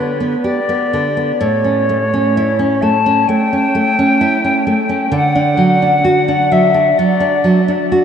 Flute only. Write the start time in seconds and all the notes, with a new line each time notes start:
Already playing: B4
0.44 D5
1.40 C#5
2.82 A5
3.28 G5
5.15 F#5
6.52 E5
6.98 D5